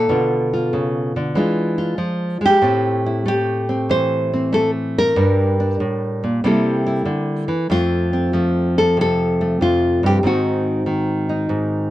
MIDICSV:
0, 0, Header, 1, 2, 480
1, 0, Start_track
1, 0, Key_signature, -1, "major"
1, 0, Tempo, 633580
1, 64, Time_signature, 4, 2, 24, 8
1, 9018, End_track
2, 0, Start_track
2, 0, Title_t, "Nylon-string guitar"
2, 0, Program_c, 0, 24
2, 0, Note_on_c, 0, 69, 90
2, 69, Note_on_c, 0, 47, 61
2, 73, Note_on_c, 0, 50, 42
2, 86, Note_on_c, 0, 65, 46
2, 397, Note_off_c, 0, 65, 0
2, 405, Note_on_c, 0, 65, 45
2, 548, Note_off_c, 0, 50, 0
2, 553, Note_on_c, 0, 49, 56
2, 863, Note_off_c, 0, 69, 0
2, 870, Note_off_c, 0, 49, 0
2, 880, Note_on_c, 0, 50, 59
2, 1007, Note_off_c, 0, 47, 0
2, 1014, Note_off_c, 0, 65, 0
2, 1025, Note_on_c, 0, 52, 62
2, 1028, Note_on_c, 0, 56, 43
2, 1031, Note_off_c, 0, 50, 0
2, 1036, Note_on_c, 0, 62, 42
2, 1040, Note_on_c, 0, 65, 42
2, 1340, Note_off_c, 0, 65, 0
2, 1349, Note_on_c, 0, 65, 47
2, 1496, Note_off_c, 0, 52, 0
2, 1500, Note_on_c, 0, 53, 54
2, 1816, Note_off_c, 0, 56, 0
2, 1822, Note_off_c, 0, 53, 0
2, 1825, Note_on_c, 0, 56, 58
2, 1827, Note_off_c, 0, 65, 0
2, 1860, Note_on_c, 0, 67, 89
2, 1971, Note_off_c, 0, 62, 0
2, 1981, Note_on_c, 0, 45, 64
2, 1983, Note_off_c, 0, 56, 0
2, 1987, Note_on_c, 0, 57, 45
2, 1995, Note_on_c, 0, 60, 42
2, 2001, Note_on_c, 0, 64, 41
2, 2312, Note_off_c, 0, 64, 0
2, 2321, Note_on_c, 0, 64, 40
2, 2457, Note_off_c, 0, 57, 0
2, 2466, Note_on_c, 0, 57, 55
2, 2471, Note_off_c, 0, 64, 0
2, 2477, Note_off_c, 0, 67, 0
2, 2486, Note_on_c, 0, 67, 89
2, 2786, Note_off_c, 0, 60, 0
2, 2795, Note_on_c, 0, 60, 41
2, 2950, Note_on_c, 0, 52, 54
2, 2960, Note_on_c, 0, 72, 93
2, 3270, Note_off_c, 0, 60, 0
2, 3284, Note_on_c, 0, 60, 45
2, 3419, Note_off_c, 0, 57, 0
2, 3428, Note_on_c, 0, 57, 64
2, 3432, Note_off_c, 0, 72, 0
2, 3435, Note_off_c, 0, 67, 0
2, 3440, Note_on_c, 0, 69, 87
2, 3561, Note_off_c, 0, 69, 0
2, 3776, Note_on_c, 0, 70, 88
2, 3883, Note_off_c, 0, 45, 0
2, 3887, Note_off_c, 0, 57, 0
2, 3888, Note_off_c, 0, 52, 0
2, 3894, Note_off_c, 0, 60, 0
2, 3911, Note_on_c, 0, 43, 67
2, 3912, Note_on_c, 0, 55, 40
2, 3923, Note_on_c, 0, 62, 45
2, 4234, Note_off_c, 0, 62, 0
2, 4243, Note_on_c, 0, 62, 43
2, 4387, Note_off_c, 0, 43, 0
2, 4395, Note_on_c, 0, 45, 53
2, 4711, Note_off_c, 0, 45, 0
2, 4721, Note_off_c, 0, 70, 0
2, 4724, Note_on_c, 0, 46, 55
2, 4853, Note_off_c, 0, 62, 0
2, 4873, Note_off_c, 0, 46, 0
2, 4878, Note_off_c, 0, 55, 0
2, 4878, Note_on_c, 0, 48, 62
2, 4881, Note_on_c, 0, 55, 55
2, 4888, Note_on_c, 0, 58, 51
2, 4893, Note_on_c, 0, 64, 55
2, 4899, Note_on_c, 0, 69, 55
2, 5192, Note_off_c, 0, 64, 0
2, 5201, Note_on_c, 0, 64, 61
2, 5342, Note_off_c, 0, 48, 0
2, 5345, Note_on_c, 0, 50, 55
2, 5664, Note_off_c, 0, 55, 0
2, 5666, Note_off_c, 0, 50, 0
2, 5667, Note_on_c, 0, 52, 56
2, 5813, Note_off_c, 0, 64, 0
2, 5817, Note_off_c, 0, 58, 0
2, 5823, Note_off_c, 0, 69, 0
2, 5825, Note_off_c, 0, 52, 0
2, 5831, Note_on_c, 0, 41, 69
2, 5835, Note_on_c, 0, 53, 40
2, 5842, Note_on_c, 0, 57, 46
2, 5845, Note_on_c, 0, 65, 97
2, 5849, Note_on_c, 0, 60, 45
2, 6157, Note_off_c, 0, 60, 0
2, 6160, Note_on_c, 0, 60, 46
2, 6303, Note_off_c, 0, 53, 0
2, 6312, Note_off_c, 0, 57, 0
2, 6313, Note_on_c, 0, 53, 60
2, 6321, Note_on_c, 0, 57, 45
2, 6635, Note_off_c, 0, 65, 0
2, 6652, Note_on_c, 0, 69, 90
2, 6795, Note_on_c, 0, 48, 53
2, 6797, Note_off_c, 0, 69, 0
2, 6826, Note_on_c, 0, 69, 94
2, 7115, Note_off_c, 0, 57, 0
2, 7128, Note_on_c, 0, 57, 49
2, 7269, Note_off_c, 0, 41, 0
2, 7280, Note_on_c, 0, 41, 56
2, 7286, Note_off_c, 0, 69, 0
2, 7290, Note_on_c, 0, 65, 73
2, 7594, Note_off_c, 0, 41, 0
2, 7599, Note_off_c, 0, 65, 0
2, 7600, Note_on_c, 0, 43, 53
2, 7623, Note_on_c, 0, 67, 93
2, 7707, Note_off_c, 0, 67, 0
2, 7730, Note_off_c, 0, 53, 0
2, 7731, Note_off_c, 0, 48, 0
2, 7737, Note_off_c, 0, 57, 0
2, 7747, Note_off_c, 0, 43, 0
2, 7750, Note_on_c, 0, 44, 67
2, 7759, Note_on_c, 0, 51, 39
2, 7766, Note_off_c, 0, 60, 0
2, 7766, Note_on_c, 0, 60, 41
2, 7773, Note_on_c, 0, 63, 46
2, 7779, Note_on_c, 0, 66, 72
2, 8220, Note_off_c, 0, 51, 0
2, 8229, Note_on_c, 0, 51, 53
2, 8546, Note_off_c, 0, 63, 0
2, 8556, Note_on_c, 0, 63, 47
2, 8697, Note_off_c, 0, 44, 0
2, 8706, Note_on_c, 0, 44, 50
2, 9018, Note_off_c, 0, 44, 0
2, 9018, Note_off_c, 0, 51, 0
2, 9018, Note_off_c, 0, 60, 0
2, 9018, Note_off_c, 0, 63, 0
2, 9018, Note_off_c, 0, 66, 0
2, 9018, End_track
0, 0, End_of_file